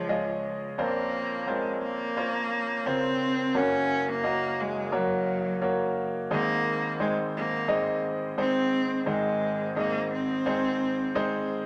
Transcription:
0.00 0.74 C#2 medium
0.00 0.74 C#3 medium
0.00 0.45 F3 medium
0.00 0.09 G#3 medium
0.00 0.09 C#4 medium
0.00 0.09 F4 medium
0.00 0.09 G#4 medium
0.00 0.81 C#5 medium
0.00 0.09 D#5 medium
0.09 0.64 G#3 medium
0.09 0.64 C#4 medium
0.09 0.64 F4 medium
0.09 0.64 G#4 medium
0.09 0.64 D#5 medium
0.78 3.51 A#1 medium
0.78 3.51 A#2 medium
0.78 1.50 A#3 medium
0.78 1.33 C4 medium
0.78 1.33 C#4 medium
0.78 1.33 F4 medium
0.78 1.33 A#4 medium
0.78 1.34 C5 medium
1.47 1.82 G#3 medium
1.47 2.02 C4 medium
1.47 2.02 C#4 medium
1.47 2.02 F4 medium
1.47 2.02 A#4 medium
1.47 2.03 C5 medium
1.83 2.88 A#3 loud
2.17 2.72 C#4 medium
2.17 2.72 F4 medium
2.17 2.72 A#4 medium
2.17 2.72 C5 medium
2.17 2.72 C#5 medium
2.86 3.41 C#3 medium
2.86 3.41 C4 medium
2.86 3.58 C4 loud
2.86 3.41 F4 medium
2.86 3.41 A#4 medium
2.86 3.41 C5 medium
3.55 6.27 F#1 medium
3.55 6.27 F#2 medium
3.55 4.10 A#3 medium
3.55 4.10 C#4 medium
3.55 4.10 C#4 loud
3.55 4.10 F#4 medium
3.55 4.10 A#4 medium
3.55 4.10 C#5 medium
4.08 4.62 A#3 loud
4.23 4.79 A#3 medium
4.23 4.79 C#4 medium
4.23 4.79 F#4 medium
4.23 4.79 A#4 medium
4.23 4.79 D#5 medium
4.60 4.97 G#3 loud
4.92 5.98 F#3 medium
4.92 5.47 A#3 medium
4.92 5.47 C#4 medium
4.92 5.47 F#4 medium
4.92 5.48 A#4 medium
4.92 5.47 C#5 medium
5.62 6.17 A#3 medium
5.62 6.17 C#4 medium
5.62 6.17 F#4 medium
5.62 6.17 A#4 medium
5.62 6.17 C#5 medium
6.31 9.03 G#1 medium
6.31 9.03 G#2 medium
6.31 6.86 G#3 medium
6.31 6.97 A#3 loud
6.31 6.86 C4 medium
6.31 6.86 D#4 medium
6.31 6.86 G#4 medium
6.31 6.86 C5 medium
7.00 7.55 G#3 medium
7.00 7.16 G#3 loud
7.00 7.55 C4 medium
7.00 7.55 D#4 medium
7.00 7.55 G#4 medium
7.00 7.55 C5 medium
7.37 8.01 A#3 loud
7.68 8.24 G#3 medium
7.68 8.24 C4 medium
7.68 8.24 D#4 medium
7.68 8.24 G#4 medium
7.68 8.24 D#5 medium
8.38 8.93 G#3 medium
8.38 8.93 C4 medium
8.38 9.04 C4 loud
8.38 8.93 D#4 medium
8.38 8.93 G#4 medium
8.38 8.93 C5 medium
9.06 11.66 G#1 medium
9.06 11.66 G#2 medium
9.06 9.62 G#3 medium
9.06 9.73 G#3 loud
9.06 9.62 C4 medium
9.06 9.62 D#4 medium
9.06 9.62 G#4 medium
9.06 9.62 C5 medium
9.76 10.31 G#3 medium
9.76 10.09 A#3 loud
9.76 10.31 C4 medium
9.76 10.31 D#4 medium
9.76 10.32 G#4 medium
9.76 10.32 D#5 medium
10.13 11.46 C4 loud
10.46 11.01 G#3 medium
10.46 11.01 C4 medium
10.46 11.01 D#4 medium
10.46 11.01 G#4 medium
10.46 11.01 C5 medium
11.15 11.66 G#3 medium
11.15 11.66 C4 medium
11.15 11.66 D#4 medium
11.15 11.66 G#4 medium
11.15 11.66 C5 medium

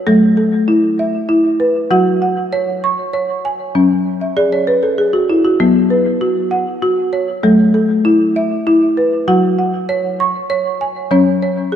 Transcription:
0.00 0.38 C#5 medium
0.07 1.88 F#3 medium
0.07 0.68 A3 medium
0.07 0.36 A4 medium
0.37 1.30 A4 medium
0.68 1.28 E4 medium
0.99 1.91 E5 medium
1.29 1.91 E4 medium
1.60 2.22 B4 medium
1.91 3.71 F#3 medium
1.91 2.53 F#4 medium
1.91 2.21 F#5 medium
2.22 3.14 F#5 medium
2.53 3.12 C#5 medium
2.84 3.76 C#6 medium
3.13 3.75 C#5 medium
3.45 4.06 G#5 medium
3.75 5.56 F#3 medium
3.75 4.37 C#4 medium
4.21 4.50 E5 medium
4.37 4.97 G#4 medium
4.37 4.65 D5 medium
4.52 4.81 C#5 medium
4.67 4.96 B4 medium
4.83 5.11 A4 medium
4.98 5.00 G#4 medium
5.13 5.42 F#4 medium
5.29 5.58 E4 medium
5.44 5.73 F#4 medium
5.60 7.40 F#3 medium
5.60 6.21 B3 medium
5.90 6.82 B4 medium
6.21 6.81 F#4 medium
6.51 7.43 F#5 medium
6.82 7.44 F#4 medium
7.13 7.74 C#5 medium
7.43 9.24 F#3 medium
7.43 8.05 A3 medium
7.43 7.73 A4 medium
7.74 8.66 A4 medium
8.05 8.66 E4 medium
8.36 9.28 E5 medium
8.67 9.28 E4 medium
8.97 9.58 B4 medium
9.28 11.08 F#3 medium
9.28 9.89 F#4 medium
9.28 9.57 F#5 medium
9.59 10.50 F#5 medium
9.89 10.49 C#5 medium
10.20 11.12 C#6 medium
10.50 11.10 C#5 medium
10.81 11.42 G#5 medium
11.11 11.76 F#3 medium
11.11 11.73 C#4 medium
11.11 11.41 C#5 medium
11.42 11.76 C#5 medium
11.72 11.76 G#4 medium

